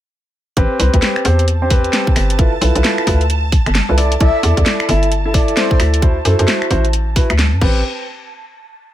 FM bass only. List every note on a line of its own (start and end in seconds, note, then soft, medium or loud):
0.57 0.67 A1 loud
0.79 0.90 C2 medium
0.94 1.00 D2 medium
1.25 1.89 E2 loud
2.16 2.57 G1 medium
2.61 2.71 B1 medium
2.75 2.82 B1 medium
3.07 3.60 D2 loud
3.66 3.81 G1 medium
3.89 4.17 C2 medium
4.20 4.31 C2 loud
4.43 4.53 E2 medium
4.57 4.63 E2 medium
4.89 5.53 G1 loud
5.80 6.21 D2 medium
6.25 6.35 F#2 medium
6.39 6.45 F#2 medium
6.71 7.24 A1 loud
7.30 7.54 D2 medium
7.53 7.61 F#2 loud
7.62 7.83 A1 loud